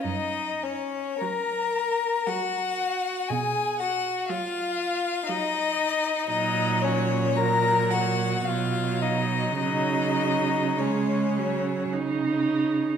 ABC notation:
X:1
M:3/4
L:1/8
Q:1/4=55
K:F#
V:1 name="Violin"
d c a2 f2 | g f e2 d2 | d c a f e d | d2 c2 z2 |]
V:2 name="Violin"
D C A2 F2 | G F E2 D2 | D C A F E D | D2 C2 z2 |]
V:3 name="Viola" clef=bass
z2 F,2 F,2 | z2 F,2 F,2 | F,2 F,2 F,2 | F,2 G, F, D2 |]
V:4 name="Cello" clef=bass
F,,2 z4 | B,,2 z4 | A,,4 B,,2 | C,4 C,2 |]